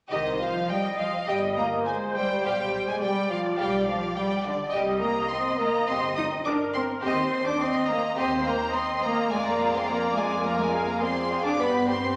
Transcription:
0.10 double bass section C2, cello section D#3, french horn section D#3, violin section G4 D#5, viola section C5
0.40 cello section F3, french horn section F3, violin section F5
0.69 cello section G3, french horn section G3, viola section D#5, violin section G5
0.99 cello section F3, french horn section F3, violin section F5
1.27 double bass section G1, french horn section G3, cello section G3, violin section G4 D#5 G5, viola section D#5
1.58 french horn section A#3, cello section A#3, violin section A#5
1.86 french horn section G#3, cello section G#3, viola section C5, violin section G#5
2.16 french horn section G3, cello section G3, violin section G5
2.44 double bass section B1, cello section G3, french horn section G3, violin section G4 F5 G5
2.87 french horn section G#3, cello section G#3, violin section G#5
3.01 french horn section G3, cello section G3, viola section D5, violin section G5
3.30 french horn section F3, cello section F3, violin section F5
3.58 double bass section B1, french horn section G3, cello section G3, violin section G4 F5 G5
3.86 french horn section F3, cello section F3, violin section F5
4.16 french horn section G3, cello section G3, viola section D5, violin section G5
4.45 french horn section D3, cello section D3, violin section D5
4.71 double bass section C2, french horn section G3, cello section G3, violin section G4 D#5 G5, viola section D#5
5.00 french horn section A#3, cello section A#3, violin section A#5
5.29 french horn section C4, cello section C4, violin section C6
5.58 french horn section A#3, cello section A#3, violin section A#5
5.86 double bass section G1, french horn section C4, cello section C4, violin section G4 D#5 C6
6.16 french horn section D#4, cello section D#4, violin section D#6
6.45 french horn section D4, cello section D4, viola section A#4, violin section D6
6.74 cello section C4, french horn section C4, violin section C6
7.01 double bass section D#2, cello section C4, french horn section C4, violin section G4 D#5 C6, viola section C5
7.46 cello section D4, french horn section D4, violin section D6
7.58 french horn section C4, cello section C4, viola section D#5, violin section C6
7.88 french horn section A#3, cello section A#3, violin section A#5
8.17 double bass section D#2, cello section C4, french horn section C4, violin section G4 D#5 C6, viola section C5
8.45 cello section A#3, french horn section A#3, violin section A#5
8.73 french horn section C4, cello section C4, viola section D#5, violin section C6
9.02 cello section A#3, french horn section A#3, violin section A#5
9.29 double bass section F2, cello section G#3, french horn section G#3, violin section F4 D5 G#5, viola section D5
9.44 cello section A#3, french horn section A#3, violin section A#5
9.60 violin section G#4 F5
9.73 cello section C4, french horn section C4, violin section C6
9.87 cello section A#3, french horn section A#3, violin section F4 D5 A#5, viola section D5
10.16 cello section G#3, french horn section G#3, violin section G#4 F5 G#5
10.43 cello section A#3, french horn section A#3, violin section F4 D5 A#5, viola section A#4
10.58 cello section G#3, french horn section G#3, violin section G#5
10.73 violin section G#4 F5
10.87 cello section A#3, french horn section A#3, violin section A#5
11.00 french horn section C4, cello section C4, violin section F4 D5 C6, viola section G#4
11.30 violin section G#4 F5
11.44 cello section D4, french horn section D4, violin section D6
11.57 double bass section G2, cello section B3, french horn section B3, viola section G4, violin section B4 D5 B5
11.88 cello section C4, french horn section C4, violin section G4 B4 C6

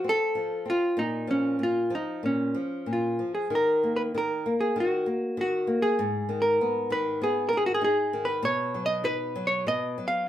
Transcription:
0.04 nylon-string guitar C4
0.09 hollow-body jazz guitar A4
0.35 nylon-string guitar F3
0.65 nylon-string guitar C4
0.70 hollow-body jazz guitar F4
0.97 nylon-string guitar A#2, hollow-body jazz guitar D#4
1.27 nylon-string guitar F3, hollow-body jazz guitar C#4
1.59 nylon-string guitar A#2
1.63 hollow-body jazz guitar F4
1.90 nylon-string guitar F3
1.95 hollow-body jazz guitar D#4
2.23 nylon-string guitar A#2, hollow-body jazz guitar C#4
2.55 nylon-string guitar F3
2.86 nylon-string guitar A#2
2.93 hollow-body jazz guitar F4
3.19 nylon-string guitar F3
3.35 hollow-body jazz guitar G#4
3.50 nylon-string guitar D#3
3.55 hollow-body jazz guitar A#4
3.83 nylon-string guitar A#3
3.96 hollow-body jazz guitar B4
4.14 nylon-string guitar D#3, hollow-body jazz guitar A#4
4.46 nylon-string guitar A#3
4.61 hollow-body jazz guitar G#4
4.76 nylon-string guitar D#3
4.80 hollow-body jazz guitar F#4
5.06 nylon-string guitar A#3
5.37 nylon-string guitar D#3, hollow-body jazz guitar F#4
5.67 nylon-string guitar A#3
5.82 hollow-body jazz guitar G#4
5.99 nylon-string guitar G#2
6.29 nylon-string guitar D#3
6.42 hollow-body jazz guitar A#4
6.61 nylon-string guitar B3
6.90 nylon-string guitar D#3, hollow-body jazz guitar B4
7.22 nylon-string guitar B3, hollow-body jazz guitar G#4
7.49 hollow-body jazz guitar A#4
7.53 nylon-string guitar D#3
7.57 hollow-body jazz guitar G#4
7.66 hollow-body jazz guitar F#4
7.74 hollow-body jazz guitar G#4
7.81 nylon-string guitar D#4, hollow-body jazz guitar G#4
8.13 nylon-string guitar D#3
8.25 hollow-body jazz guitar B4
8.43 nylon-string guitar B2, hollow-body jazz guitar C#5
8.74 nylon-string guitar F#3
8.86 hollow-body jazz guitar D#5
9.04 nylon-string guitar D#4, hollow-body jazz guitar B4
9.36 nylon-string guitar F#3
9.47 hollow-body jazz guitar C#5
9.67 nylon-string guitar B2, hollow-body jazz guitar D#5
9.98 nylon-string guitar F#3
10.08 hollow-body jazz guitar F5

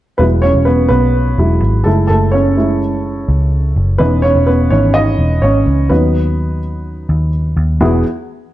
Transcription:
0.18 picked electric bass E1, upright piano F#3 G#3 B3 E4 B4
0.42 upright piano C#4 C#5
0.55 picked electric bass E1
0.65 upright piano B3 B4
0.89 picked electric bass B1, upright piano B3 B4
1.38 picked electric bass E1, upright piano F#3 G#3 E4
1.62 picked electric bass G#1
1.84 picked electric bass F#1, upright piano G#3 A3 E4 A4
2.07 picked electric bass F#1, upright piano A3 A4
2.32 upright piano C#4 C#5
2.57 upright piano G#3 A3 E4
3.28 picked electric bass C#2
3.76 picked electric bass F#1
3.98 picked electric bass E1, upright piano E3 B3 C#4 D#4 B4
4.22 upright piano C#4 C#5
4.35 picked electric bass E1
4.47 upright piano B3 B4
4.70 picked electric bass G#1, upright piano E3 C#4 D#4 C#5
4.94 upright piano D#4 D#5
5.19 picked electric bass E1
5.42 picked electric bass G#1, upright piano C#4 C#5
5.66 picked electric bass C#2
5.89 picked electric bass D#2, upright piano F#3 B3 D#4 B4
7.09 picked electric bass D#2
7.57 picked electric bass D#2
7.80 picked electric bass E1, upright piano E2 B3 E4 F#4 G#4

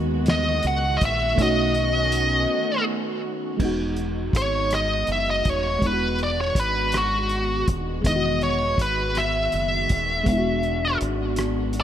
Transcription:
Already playing: fingered electric bass D#2, fm electric piano D#3 G#3 B3 F#4, string section D#3 G#3 B3 F#4
0.26 lead electric guitar D#5, snare, closed hi-hat
0.63 fingered electric bass C#2, closed hi-hat
0.67 lead electric guitar F#5
0.97 lead electric guitar D#5
1.01 fingered electric bass A#1, kick, closed hi-hat
1.05 lead electric guitar E5
1.35 fingered electric bass B1, fm electric piano A3 C#4, string section A3 C#4, kick, closed hi-hat
1.39 string section D#3 B3, fm electric piano D#4 F#4, lead electric guitar D#5
1.74 closed hi-hat
2.12 closed hi-hat
3.57 fingered electric bass E1, string section D#3 G#3 B3 D#4 F#4, fm electric piano G#3 B3, kick, crash
3.62 fm electric piano D#4 F#4
3.96 closed hi-hat
4.33 fingered electric bass G#1, lead electric guitar C#5, kick, closed hi-hat
4.71 cross-stick, closed hi-hat
4.75 lead electric guitar D#5
5.07 fingered electric bass F#1, closed hi-hat
5.12 lead electric guitar E5
5.30 lead electric guitar D#5
5.45 fingered electric bass D#1, kick, closed hi-hat
5.50 lead electric guitar C#5
5.79 fingered electric bass E1, fm electric piano G#3 B3, string section G#3 D4, kick, closed hi-hat
5.84 fm electric piano D4 E4, lead electric guitar B4
5.93 fm electric piano F#4
6.18 closed hi-hat
6.23 lead electric guitar D5
6.41 lead electric guitar C#5
6.55 fingered electric bass G#1, kick, closed hi-hat
6.60 lead electric guitar B4
6.92 cross-stick, closed hi-hat
6.97 lead electric guitar F#4
7.29 closed hi-hat
7.68 fingered electric bass D#1, kick, closed hi-hat
8.01 fingered electric bass E1, fm electric piano G#3 B3, kick, closed hi-hat
8.07 fm electric piano D#3 E4, lead electric guitar D#5
8.16 fm electric piano F#4
8.41 lead electric guitar C#5, closed hi-hat
8.78 fingered electric bass G#1, lead electric guitar B4, kick, closed hi-hat
9.15 lead electric guitar E5, cross-stick, closed hi-hat
9.52 fingered electric bass F#1, closed hi-hat
9.89 fingered electric bass D#1, kick, closed hi-hat
10.24 fingered electric bass E1, fm electric piano G#3 B3, kick, closed hi-hat
10.28 string section D4, fm electric piano D4
10.32 fm electric piano E4
10.38 fm electric piano F#4
10.63 closed hi-hat
11.01 fingered electric bass G#1, closed hi-hat
11.36 cross-stick, closed hi-hat
11.73 closed hi-hat

